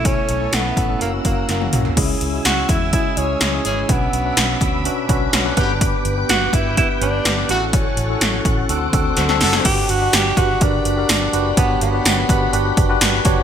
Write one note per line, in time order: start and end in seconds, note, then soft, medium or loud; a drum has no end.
0.00 0.16 B1 medium
0.00 0.49 B2 medium
0.00 0.29 A3 medium
0.00 0.29 C#4 medium
0.00 0.29 E4 medium
0.00 0.30 A4 medium
0.00 1.00 A4 medium
0.00 0.99 E5 medium
0.00 1.00 C#6 medium
0.05 0.56 C#4 medium
0.05 kick loud
0.05 closed hi-hat medium
0.29 0.47 B1 medium
0.29 closed hi-hat medium
0.41 0.73 A3 medium
0.41 0.73 C#4 medium
0.41 0.74 E4 medium
0.41 0.74 A4 medium
0.53 0.70 B1 medium
0.53 1.01 B3 medium
0.53 snare loud
0.53 closed hi-hat medium
0.77 0.94 A1 medium
0.77 kick medium
0.77 closed hi-hat medium
0.88 1.01 A3 medium
0.88 1.00 C#4 medium
0.88 1.00 E4 medium
0.88 1.01 A4 medium
1.00 1.18 F#1 medium
1.00 1.10 A#3 medium
1.00 1.13 A#3 medium
1.00 1.11 C#4 medium
1.00 1.11 E4 medium
1.00 1.11 F#4 medium
1.00 1.96 A#4 medium
1.00 1.96 F#5 medium
1.00 1.96 E6 medium
1.00 closed hi-hat medium
1.13 1.45 A#3 medium
1.13 1.45 C#4 medium
1.13 1.46 E4 medium
1.13 1.46 F#4 medium
1.25 1.42 F#1 medium
1.25 1.48 A#3 medium
1.25 kick medium
1.25 closed hi-hat medium
1.49 1.66 F#1 loud
1.49 1.83 A#3 medium
1.49 snare medium
1.49 closed hi-hat medium
1.60 1.85 A#3 medium
1.60 1.85 C#4 medium
1.60 1.85 E4 medium
1.60 1.86 F#4 medium
1.60 high tom medium
1.73 1.91 B1 medium
1.73 closed hi-hat medium
1.73 mid tom medium
1.85 floor tom medium
1.96 2.14 C#2 loud
1.96 2.65 C#3 medium
1.96 2.21 G#3 medium
1.96 2.21 C#4 medium
1.96 2.21 E4 medium
1.96 2.22 G#4 medium
1.96 5.54 E5 medium
1.96 3.87 G#5 medium
1.96 3.87 E6 medium
1.96 kick loud
1.96 closed hi-hat medium
1.96 crash medium
2.21 2.38 C#2 medium
2.21 closed hi-hat medium
2.33 2.73 G#3 medium
2.33 2.74 C#4 medium
2.33 2.74 E4 medium
2.33 2.74 F#4 medium
2.45 2.62 C#2 medium
2.45 2.71 F#4 loud
2.45 snare loud
2.45 closed hi-hat medium
2.69 2.95 E2 medium
2.69 2.94 E4 medium
2.69 kick medium
2.69 closed hi-hat medium
2.93 3.09 G#3 medium
2.93 3.09 C#4 medium
2.93 3.10 E4 medium
2.93 3.19 E4 medium
2.93 3.10 G#4 medium
2.93 kick medium
2.93 closed hi-hat medium
3.17 3.34 C#2 medium
3.17 3.41 G#3 medium
3.17 3.41 C#4 medium
3.17 3.66 C#4 medium
3.17 3.42 E4 medium
3.17 3.42 G#4 medium
3.17 closed hi-hat medium
3.41 3.58 C#2 loud
3.41 3.51 E3 medium
3.41 3.51 C#4 medium
3.41 3.51 G#4 medium
3.41 snare loud
3.41 closed hi-hat medium
3.53 3.77 G#3 medium
3.53 3.77 C#4 medium
3.53 3.78 E4 medium
3.53 3.78 G#4 medium
3.65 3.82 G#1 medium
3.65 3.81 E3 medium
3.65 3.81 C#4 medium
3.65 3.92 C#4 medium
3.65 3.81 G#4 loud
3.65 closed hi-hat medium
3.88 4.06 B1 loud
3.88 4.57 B2 medium
3.88 4.86 B3 medium
3.88 4.13 C#4 medium
3.88 4.13 D4 medium
3.88 4.13 F#4 medium
3.88 4.14 B4 medium
3.88 5.56 B5 medium
3.88 7.46 D6 medium
3.88 kick loud
3.88 closed hi-hat medium
4.13 4.31 B1 medium
4.13 closed hi-hat medium
4.25 4.65 C#4 medium
4.25 4.65 D4 medium
4.25 4.66 F#4 medium
4.25 4.66 B4 medium
4.37 4.54 B1 medium
4.37 snare loud
4.37 closed hi-hat medium
4.61 4.87 D2 medium
4.61 kick medium
4.61 closed hi-hat medium
4.85 5.01 C#4 medium
4.85 5.01 D4 medium
4.85 5.01 F#4 medium
4.85 5.02 B4 medium
4.85 closed hi-hat medium
5.09 5.26 B1 loud
5.09 5.33 C#4 medium
5.09 5.33 D4 medium
5.09 5.34 F#4 medium
5.09 5.34 B4 medium
5.09 kick medium
5.09 closed hi-hat medium
5.33 5.51 B1 loud
5.33 5.44 D3 medium
5.33 5.44 C#4 medium
5.33 5.43 F#4 medium
5.33 snare loud
5.33 closed hi-hat medium
5.45 5.57 C#4 medium
5.45 5.56 D4 medium
5.45 5.57 F#4 medium
5.45 5.56 B4 medium
5.57 5.92 G1 medium
5.57 6.25 G2 medium
5.57 5.72 D3 medium
5.57 6.05 B3 medium
5.57 5.73 B3 medium
5.57 6.05 D4 medium
5.57 6.05 G4 medium
5.57 5.73 G4 loud
5.57 7.47 B4 medium
5.57 6.05 B4 loud
5.57 7.47 G5 medium
5.57 kick loud
5.57 closed hi-hat medium
5.81 kick loud
5.81 closed hi-hat medium
6.05 6.23 G1 loud
6.05 closed hi-hat medium
6.17 6.58 B3 medium
6.17 6.58 D4 medium
6.17 6.58 G4 medium
6.17 6.58 B4 medium
6.29 6.47 G1 medium
6.29 6.56 F#4 loud
6.29 snare loud
6.29 closed hi-hat medium
6.53 6.79 G1 medium
6.53 6.77 E4 medium
6.53 kick medium
6.53 closed hi-hat medium
6.77 6.93 B3 medium
6.77 6.93 D4 medium
6.77 6.89 E4 medium
6.77 6.94 G4 medium
6.77 6.94 B4 medium
6.77 kick medium
6.77 closed hi-hat medium
7.01 7.19 G1 medium
7.01 7.25 B3 medium
7.01 7.25 D4 medium
7.01 7.47 D4 loud
7.01 7.26 G4 medium
7.01 7.26 B4 medium
7.01 closed hi-hat medium
7.25 7.42 G1 loud
7.25 7.36 D3 medium
7.25 7.36 B3 medium
7.25 7.36 G4 medium
7.25 snare loud
7.25 closed hi-hat medium
7.37 7.49 B3 medium
7.37 7.49 D4 medium
7.37 7.50 G4 medium
7.37 7.50 B4 medium
7.49 7.84 A1 loud
7.49 8.17 A2 medium
7.49 7.65 C#3 medium
7.49 7.65 A3 medium
7.49 7.97 C#4 medium
7.49 7.97 E4 medium
7.49 7.65 F#4 loud
7.49 7.98 F#4 medium
7.49 7.61 F#4 medium
7.49 8.68 A4 medium
7.49 7.98 A4 medium
7.49 9.63 F#5 medium
7.49 8.68 C#6 medium
7.49 closed hi-hat medium
7.73 8.66 C#4 medium
7.73 kick loud
7.73 closed hi-hat medium
7.97 8.14 A1 loud
7.97 closed hi-hat medium
8.09 8.49 C#4 medium
8.09 8.50 E4 medium
8.09 8.50 F#4 medium
8.09 8.50 A4 medium
8.21 8.38 A1 loud
8.21 snare loud
8.21 closed hi-hat medium
8.45 8.62 A1 medium
8.45 kick medium
8.45 closed hi-hat medium
8.69 8.87 D2 medium
8.69 9.37 D3 medium
8.69 8.85 C4 medium
8.69 8.85 D4 medium
8.69 8.86 F#4 medium
8.69 8.86 A4 medium
8.69 9.64 C5 medium
8.69 9.64 D6 medium
8.69 closed hi-hat medium
8.93 9.11 D2 medium
8.93 9.17 C4 medium
8.93 9.17 D4 medium
8.93 9.18 F#4 medium
8.93 9.18 A4 medium
8.93 kick medium
8.93 closed hi-hat medium
9.17 9.42 D2 loud
9.17 9.28 D3 medium
9.17 9.28 C4 medium
9.17 9.28 F#4 medium
9.17 snare medium
9.17 closed hi-hat medium
9.29 9.53 C4 medium
9.29 9.54 D4 medium
9.29 9.54 F#4 medium
9.29 9.54 A4 medium
9.29 snare medium
9.41 9.58 F#1 medium
9.41 9.72 F#3 medium
9.41 9.72 D4 loud
9.41 9.72 A4 loud
9.41 snare medium
9.41 open hi-hat medium
9.53 snare medium
9.65 9.82 G1 loud
9.65 10.34 G2 medium
9.65 9.90 D4 medium
9.65 9.90 F#4 medium
9.65 13.43 G4 medium
9.65 9.91 G4 loud
9.65 9.90 G4 medium
9.65 13.43 F#5 medium
9.65 13.43 B5 medium
9.65 kick loud
9.65 closed hi-hat medium
9.65 crash medium
9.89 10.07 G1 medium
9.89 10.15 F#4 loud
9.89 closed hi-hat medium
10.01 10.26 D4 medium
10.01 10.26 F#4 medium
10.01 10.26 G4 medium
10.01 10.26 B4 medium
10.13 10.31 G1 loud
10.13 10.39 G4 loud
10.13 snare loud
10.13 closed hi-hat loud
10.13 tambourine medium
10.37 10.54 G1 medium
10.37 10.53 D4 medium
10.37 10.64 F#4 loud
10.37 10.54 F#4 medium
10.37 10.54 G4 medium
10.37 10.54 B4 medium
10.37 kick medium
10.37 closed hi-hat medium
10.61 10.79 G1 loud
10.61 10.85 D4 medium
10.61 11.58 D4 loud
10.61 10.85 F#4 medium
10.61 10.86 G4 medium
10.61 10.86 A#4 medium
10.61 kick medium
10.61 closed hi-hat medium
10.85 11.03 F#1 medium
10.85 closed hi-hat medium
10.97 11.21 D4 medium
10.97 11.22 F#4 medium
10.97 11.22 G4 medium
10.97 11.22 A#4 medium
11.09 11.27 G1 loud
11.09 snare loud
11.09 closed hi-hat medium
11.09 tambourine medium
11.33 11.51 F#1 medium
11.33 11.49 D4 medium
11.33 11.50 F#4 medium
11.33 11.50 G4 medium
11.33 11.50 B4 medium
11.33 closed hi-hat medium
11.57 11.75 G1 loud
11.57 12.25 G2 medium
11.57 11.80 B3 medium
11.57 11.81 D4 medium
11.57 11.82 F#4 medium
11.57 11.82 G4 medium
11.57 11.82 C#5 medium
11.57 kick loud
11.57 closed hi-hat loud
11.81 11.99 G1 medium
11.81 12.74 B3 medium
11.81 closed hi-hat medium
11.93 12.17 D4 medium
11.93 12.18 F#4 medium
11.93 12.18 G4 medium
11.93 12.18 B4 medium
12.05 12.23 G1 loud
12.05 snare loud
12.05 closed hi-hat loud
12.05 tambourine medium
12.29 12.47 G1 loud
12.29 12.45 D4 medium
12.29 12.45 F#4 medium
12.29 12.46 G4 medium
12.29 12.46 B4 medium
12.29 kick medium
12.29 closed hi-hat medium
12.53 12.70 G1 loud
12.53 12.77 D4 medium
12.53 12.77 F#4 medium
12.53 12.78 G4 medium
12.53 12.78 B4 medium
12.53 closed hi-hat medium
12.77 12.95 F#1 medium
12.77 kick medium
12.77 closed hi-hat medium
12.89 13.13 D4 medium
12.89 13.14 F#4 medium
12.89 13.14 G4 medium
12.89 13.14 B4 loud
13.01 13.19 G1 loud
13.01 snare loud
13.01 closed hi-hat medium
13.01 tambourine medium
13.25 13.43 F#1 loud
13.25 13.41 D4 medium
13.25 13.41 F#4 medium
13.25 13.42 G4 medium
13.25 13.42 C#5 loud
13.25 kick loud
13.25 closed hi-hat medium